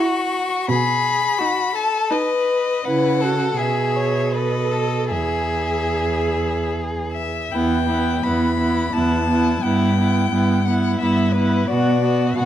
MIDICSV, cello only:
0, 0, Header, 1, 2, 480
1, 0, Start_track
1, 0, Key_signature, 4, "major"
1, 0, Tempo, 715137
1, 464, Time_signature, 3, 2, 24, 8
1, 1415, Tempo, 746269
1, 2855, Tempo, 794702
1, 4774, Key_signature, 1, "minor"
1, 4775, Tempo, 707547
1, 5735, Tempo, 688073
1, 8184, End_track
2, 0, Start_track
2, 0, Title_t, "Cello"
2, 0, Program_c, 0, 42
2, 459, Note_on_c, 0, 47, 65
2, 836, Note_off_c, 0, 47, 0
2, 1894, Note_on_c, 0, 49, 48
2, 2343, Note_off_c, 0, 49, 0
2, 2370, Note_on_c, 0, 47, 45
2, 3323, Note_on_c, 0, 40, 42
2, 3332, Note_off_c, 0, 47, 0
2, 4655, Note_off_c, 0, 40, 0
2, 4771, Note_on_c, 0, 40, 52
2, 5200, Note_off_c, 0, 40, 0
2, 5265, Note_on_c, 0, 40, 43
2, 5681, Note_off_c, 0, 40, 0
2, 5730, Note_on_c, 0, 40, 47
2, 6156, Note_off_c, 0, 40, 0
2, 6211, Note_on_c, 0, 43, 49
2, 6636, Note_off_c, 0, 43, 0
2, 6686, Note_on_c, 0, 43, 45
2, 7114, Note_off_c, 0, 43, 0
2, 7164, Note_on_c, 0, 43, 46
2, 7593, Note_off_c, 0, 43, 0
2, 7647, Note_on_c, 0, 47, 52
2, 8073, Note_off_c, 0, 47, 0
2, 8125, Note_on_c, 0, 47, 48
2, 8184, Note_off_c, 0, 47, 0
2, 8184, End_track
0, 0, End_of_file